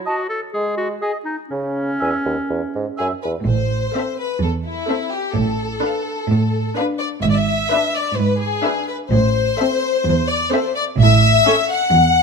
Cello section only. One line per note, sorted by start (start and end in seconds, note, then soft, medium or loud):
3.46 3.84 A2 soft
4.41 4.79 E2 medium
5.36 5.74 A2 medium
6.30 6.68 A2 medium
7.24 7.61 G#2 medium
8.17 8.55 G#2 medium
9.12 9.49 A2 medium
10.05 10.42 E2 medium
11.00 11.36 A2 medium
11.92 12.23 E2 medium